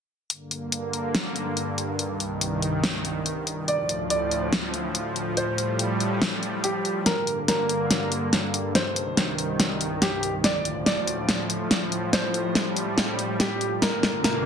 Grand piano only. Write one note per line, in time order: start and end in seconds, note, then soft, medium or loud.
3.68 3.98 D5 medium
4.10 4.66 D5 medium
5.37 5.92 C5 medium
6.64 6.94 G4 medium
7.06 7.36 A#4 medium
7.48 8.04 A#4 medium
8.75 9.30 C5 medium
10.02 10.32 G4 medium
10.44 10.74 D5 medium
10.86 11.42 D5 medium
12.13 12.68 C5 medium
13.40 13.70 G4 medium
13.82 14.12 A#4 medium
14.24 14.46 A#4 medium